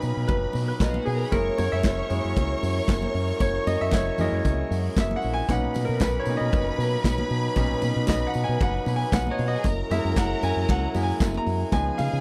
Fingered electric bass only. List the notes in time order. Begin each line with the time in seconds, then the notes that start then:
0.03 B2
0.17 B2
0.29 F#1
0.54 B2
0.80 B1
1.07 B2
1.32 F#1
1.59 F#2
1.72 F#2
1.85 F#1
2.10 F#2
2.24 F#2
2.37 C#2
2.63 F#2
2.89 F#1
3.14 F#2
3.41 F#1
3.67 F#2
3.81 F#2
3.93 F#1
4.19 F#2
4.32 F#2
4.45 C#2
4.71 F#2
4.97 F#1
5.24 A#1
5.49 B1
5.76 B2
5.89 B2
6.01 B1
6.26 B2
6.41 B2
6.53 F#1
6.78 B2
7.05 B1
7.31 B2
7.57 B1
7.83 B2
7.96 B2
8.09 B1
8.35 B2
8.49 B2
8.61 F#1
8.86 B2
9.13 B1
9.39 B2
9.65 F#1
9.90 F#2
10.05 F#2
10.17 F#1
10.43 F#2
10.56 F#2
10.69 C#2
10.95 F#2
11.21 F#1
11.46 F#2
11.73 C#2
12.00 C#3
12.13 C#3